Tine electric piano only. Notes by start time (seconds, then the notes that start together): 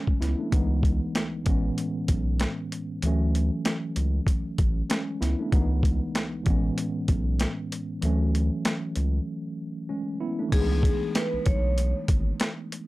Already playing: E3 F#3 G#3 A3 C#4
0.21 B3 E4
0.39 A3 D4
0.51 C#2 E3 G#3 B3 D#4
1.44 A2 E3 G#3
1.48 B3 C#4
3.02 E3 F#3 A3
3.07 C#4
4.89 G#3 C#4
5.21 B3 E4
5.39 A3 D4
5.51 C#2 E3 G#3 B3 D#4
6.43 A2 E3 G#3
6.48 B3 C#4
8.02 E3 F#3 A3
8.06 C#4
9.89 G#3 C#4
10.21 B3 E4
10.39 A3 D4
10.49 E3 G#3 B3
10.55 D#4